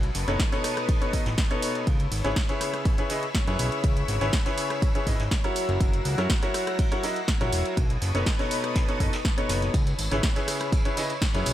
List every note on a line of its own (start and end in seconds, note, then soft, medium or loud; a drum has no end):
0.00 0.11 B1 loud
0.00 1.85 B4 medium
0.00 1.85 A5 medium
0.00 1.85 C#6 medium
0.00 1.85 D#6 medium
0.00 closed hi-hat soft
0.14 0.25 F#1 medium
0.14 snare soft
0.14 open hi-hat loud
0.14 ride medium
0.27 0.37 F#1 medium
0.27 0.40 B2 medium
0.27 0.40 D#4 medium
0.27 0.40 A4 medium
0.27 0.40 B4 medium
0.27 0.40 C#5 medium
0.27 snare soft
0.27 closed hi-hat soft
0.39 kick loud
0.39 snare loud
0.39 closed hi-hat medium
0.39 ride medium
0.52 0.98 B2 medium
0.52 0.98 D#4 medium
0.52 0.98 A4 medium
0.52 0.98 B4 medium
0.52 0.98 C#5 loud
0.52 snare medium
0.52 closed hi-hat soft
0.64 cross-stick medium
0.64 open hi-hat loud
0.64 ride medium
0.77 cross-stick medium
0.77 closed hi-hat soft
0.89 kick loud
0.89 closed hi-hat medium
0.89 ride medium
1.01 1.11 B2 medium
1.01 1.11 D#4 medium
1.01 1.11 A4 medium
1.01 1.11 B4 medium
1.01 1.11 C#5 medium
1.01 closed hi-hat soft
1.13 1.26 B2 medium
1.13 1.26 D#4 medium
1.13 1.26 A4 medium
1.13 1.26 B4 medium
1.13 1.26 D#5 medium
1.13 kick medium
1.13 open hi-hat loud
1.13 ride medium
1.26 1.36 A1 medium
1.26 snare medium
1.26 closed hi-hat soft
1.37 kick loud
1.37 snare loud
1.37 closed hi-hat medium
1.37 ride medium
1.51 1.86 B2 medium
1.51 1.86 D#4 medium
1.51 1.86 A4 medium
1.51 1.86 B4 medium
1.51 1.86 C#5 loud
1.51 closed hi-hat soft
1.51 ride soft
1.62 open hi-hat loud
1.62 ride medium
1.75 closed hi-hat soft
1.87 2.07 C#2 loud
1.87 5.52 C#5 medium
1.87 5.52 B5 medium
1.87 7.73 E6 medium
1.87 kick loud
1.87 closed hi-hat medium
1.87 ride medium
2.00 closed hi-hat soft
2.12 2.22 G#1 medium
2.12 open hi-hat loud
2.12 ride medium
2.24 2.34 G#1 medium
2.24 2.36 C#3 medium
2.24 2.36 E4 medium
2.24 2.36 G#4 medium
2.24 2.36 B4 medium
2.24 2.36 C#5 loud
2.24 snare soft
2.24 closed hi-hat soft
2.36 kick loud
2.36 snare loud
2.36 closed hi-hat medium
2.36 ride loud
2.48 2.95 C#3 medium
2.48 2.95 E4 medium
2.48 2.95 G#4 medium
2.48 2.95 B4 medium
2.48 2.95 C#5 loud
2.48 snare soft
2.48 closed hi-hat soft
2.61 cross-stick medium
2.61 open hi-hat loud
2.61 ride medium
2.74 cross-stick medium
2.74 closed hi-hat soft
2.74 ride soft
2.85 kick loud
2.85 closed hi-hat medium
2.85 ride medium
2.98 3.08 C#3 medium
2.98 3.08 E4 medium
2.98 3.08 G#4 medium
2.98 3.08 B4 medium
2.98 3.08 C#5 medium
2.98 closed hi-hat soft
3.09 3.23 C#3 medium
3.09 3.23 E4 medium
3.09 3.23 G#4 medium
3.09 3.23 B4 medium
3.09 3.23 D#5 medium
3.09 snare medium
3.09 open hi-hat loud
3.09 ride medium
3.23 closed hi-hat soft
3.34 kick loud
3.34 snare loud
3.34 closed hi-hat medium
3.34 ride medium
3.47 3.57 F#2 medium
3.47 4.18 C#3 medium
3.47 4.18 E4 medium
3.47 4.18 G#4 medium
3.47 4.18 B4 medium
3.47 4.18 C#5 loud
3.47 snare soft
3.47 closed hi-hat soft
3.59 3.70 B1 medium
3.59 open hi-hat loud
3.59 ride medium
3.72 closed hi-hat soft
3.84 4.04 C#2 loud
3.84 kick loud
3.84 closed hi-hat medium
3.84 ride medium
3.97 closed hi-hat soft
4.08 4.19 G#1 medium
4.08 snare soft
4.08 open hi-hat loud
4.08 ride medium
4.21 4.31 G#1 medium
4.21 4.33 C#3 medium
4.21 4.33 E4 medium
4.21 4.33 G#4 medium
4.21 4.33 B4 medium
4.21 4.33 C#5 loud
4.21 snare soft
4.21 closed hi-hat soft
4.32 kick loud
4.32 snare loud
4.32 closed hi-hat medium
4.32 ride medium
4.45 4.92 C#3 medium
4.45 4.92 E4 medium
4.45 4.92 G#4 medium
4.45 4.92 B4 medium
4.45 4.92 C#5 loud
4.45 snare medium
4.45 closed hi-hat soft
4.58 open hi-hat loud
4.58 ride medium
4.70 cross-stick medium
4.70 closed hi-hat soft
4.82 kick loud
4.82 closed hi-hat medium
4.82 ride medium
4.95 5.05 C#3 medium
4.95 5.05 E4 medium
4.95 5.05 G#4 medium
4.95 5.05 B4 medium
4.95 5.05 C#5 medium
4.95 closed hi-hat soft
5.07 5.17 G#1 medium
5.07 5.20 C#3 medium
5.07 5.20 E4 medium
5.07 5.20 G#4 medium
5.07 5.20 B4 medium
5.07 5.20 D#5 medium
5.07 kick medium
5.07 open hi-hat loud
5.07 ride medium
5.20 5.29 G#1 medium
5.20 snare medium
5.20 closed hi-hat soft
5.31 kick loud
5.31 snare loud
5.31 closed hi-hat medium
5.31 ride medium
5.44 6.15 F#3 medium
5.44 6.15 E4 medium
5.44 6.15 F#4 medium
5.44 6.15 A#4 medium
5.44 6.15 C#5 loud
5.44 closed hi-hat soft
5.44 ride soft
5.56 7.75 F#5 medium
5.56 7.75 A#6 medium
5.56 open hi-hat loud
5.56 ride medium
5.69 5.78 F#1 loud
5.69 closed hi-hat soft
5.80 6.01 F#1 loud
5.80 kick loud
5.80 closed hi-hat medium
5.80 ride medium
5.94 closed hi-hat soft
6.05 6.16 C#2 medium
6.05 open hi-hat loud
6.05 ride medium
6.18 6.28 F#2 medium
6.18 6.30 F#3 medium
6.18 6.30 E4 medium
6.18 6.30 F#4 medium
6.18 6.30 A#4 medium
6.18 6.30 C#5 loud
6.18 snare soft
6.18 closed hi-hat soft
6.30 kick loud
6.30 snare loud
6.30 closed hi-hat medium
6.30 ride medium
6.42 6.89 F#3 medium
6.42 6.89 E4 medium
6.42 6.89 F#4 medium
6.42 6.89 A#4 medium
6.42 6.89 C#5 loud
6.42 snare soft
6.42 closed hi-hat soft
6.54 cross-stick medium
6.54 open hi-hat loud
6.54 ride medium
6.66 cross-stick medium
6.66 closed hi-hat soft
6.66 ride soft
6.78 kick loud
6.78 closed hi-hat medium
6.78 ride loud
6.92 7.02 F#3 medium
6.92 7.02 E4 medium
6.92 7.02 F#4 medium
6.92 7.02 A#4 medium
6.92 7.02 C#5 medium
6.92 closed hi-hat soft
7.03 7.17 F#3 medium
7.03 7.17 E4 medium
7.03 7.17 F#4 medium
7.03 7.17 A#4 medium
7.03 7.17 D#5 medium
7.03 snare medium
7.03 open hi-hat loud
7.03 ride medium
7.16 closed hi-hat soft
7.28 kick loud
7.28 snare loud
7.28 closed hi-hat medium
7.28 ride loud
7.40 7.51 A#1 loud
7.40 7.76 F#3 medium
7.40 7.76 E4 medium
7.40 7.76 F#4 medium
7.40 7.76 A#4 medium
7.40 7.76 C#5 loud
7.40 snare soft
7.40 closed hi-hat soft
7.53 7.63 E1 medium
7.53 open hi-hat loud
7.53 ride medium
7.66 closed hi-hat soft
7.77 7.97 B1 loud
7.77 9.72 B4 medium
7.77 9.72 A5 medium
7.77 9.72 C#6 medium
7.77 9.72 D#6 loud
7.77 kick loud
7.77 closed hi-hat medium
7.77 ride medium
7.90 closed hi-hat soft
8.02 8.12 F#1 medium
8.02 snare soft
8.02 open hi-hat loud
8.02 ride medium
8.14 8.24 F#1 medium
8.14 8.27 B2 medium
8.14 8.27 D#4 medium
8.14 8.27 A4 medium
8.14 8.27 B4 medium
8.14 8.27 C#5 medium
8.14 snare soft
8.14 closed hi-hat soft
8.26 kick loud
8.26 snare loud
8.26 closed hi-hat medium
8.26 ride medium
8.39 8.85 B2 medium
8.39 8.85 D#4 medium
8.39 8.85 A4 medium
8.39 8.85 B4 medium
8.39 8.85 C#5 loud
8.39 snare medium
8.39 closed hi-hat soft
8.51 open hi-hat loud
8.51 ride medium
8.64 cross-stick medium
8.64 closed hi-hat soft
8.75 kick loud
8.75 snare loud
8.75 closed hi-hat medium
8.75 ride medium
8.88 8.98 B2 medium
8.88 8.98 D#4 medium
8.88 8.98 A4 medium
8.88 8.98 B4 medium
8.88 8.98 C#5 medium
8.88 snare soft
8.88 closed hi-hat soft
9.00 9.11 F#1 medium
9.00 9.13 B2 medium
9.00 9.13 D#4 medium
9.00 9.13 A4 medium
9.00 9.13 B4 medium
9.00 9.13 D#5 medium
9.00 kick medium
9.00 open hi-hat loud
9.00 ride medium
9.13 snare loud
9.13 closed hi-hat soft
9.13 ride medium
9.25 kick loud
9.25 snare loud
9.25 closed hi-hat medium
9.38 9.73 B2 loud
9.38 9.73 D#4 medium
9.38 9.73 A4 medium
9.38 9.73 B4 medium
9.38 9.73 C#5 loud
9.38 closed hi-hat soft
9.38 ride medium
9.49 9.70 F#1 medium
9.49 snare loud
9.49 open hi-hat loud
9.49 ride medium
9.62 snare soft
9.62 closed hi-hat soft
9.74 9.94 C#2 loud
9.74 11.53 C#5 medium
9.74 11.53 B5 medium
9.74 11.53 E6 medium
9.74 kick loud
9.74 closed hi-hat medium
9.74 ride medium
9.74 tambourine medium
9.87 closed hi-hat soft
9.87 tambourine soft
9.98 10.09 G#1 medium
9.98 open hi-hat loud
9.98 ride medium
9.98 tambourine loud
10.11 10.21 G#1 medium
10.11 10.23 C#3 medium
10.11 10.23 E4 medium
10.11 10.23 G#4 medium
10.11 10.23 B4 medium
10.11 10.23 C#5 medium
10.11 snare soft
10.11 closed hi-hat soft
10.11 tambourine soft
10.23 kick loud
10.23 snare loud
10.23 closed hi-hat medium
10.23 ride medium
10.23 tambourine medium
10.36 10.82 C#3 medium
10.36 10.82 E4 medium
10.36 10.82 G#4 medium
10.36 10.82 B4 medium
10.36 10.82 C#5 loud
10.36 snare soft
10.36 closed hi-hat soft
10.36 tambourine soft
10.47 cross-stick medium
10.47 open hi-hat loud
10.47 ride medium
10.47 tambourine medium
10.60 cross-stick medium
10.60 closed hi-hat soft
10.60 ride soft
10.60 tambourine soft
10.72 kick loud
10.72 closed hi-hat medium
10.72 ride medium
10.72 tambourine soft
10.85 10.95 C#3 medium
10.85 10.95 E4 medium
10.85 10.95 G#4 medium
10.85 10.95 B4 medium
10.85 10.95 C#5 medium
10.85 closed hi-hat soft
10.85 tambourine soft
10.97 11.10 C#3 medium
10.97 11.10 E4 medium
10.97 11.10 G#4 medium
10.97 11.10 B4 medium
10.97 11.10 D#5 medium
10.97 snare soft
10.97 open hi-hat loud
10.97 ride medium
10.97 tambourine loud
11.09 closed hi-hat soft
11.09 tambourine soft
11.22 kick loud
11.22 snare loud
11.22 closed hi-hat medium
11.22 ride loud
11.22 tambourine medium
11.34 11.44 F#2 medium
11.34 11.53 C#3 loud
11.34 11.53 E4 medium
11.34 11.53 G#4 medium
11.34 11.53 B4 medium
11.34 11.53 C#5 loud
11.34 snare soft
11.34 closed hi-hat soft
11.34 tambourine soft
11.46 11.53 B1 medium
11.46 open hi-hat loud
11.46 ride medium
11.46 tambourine loud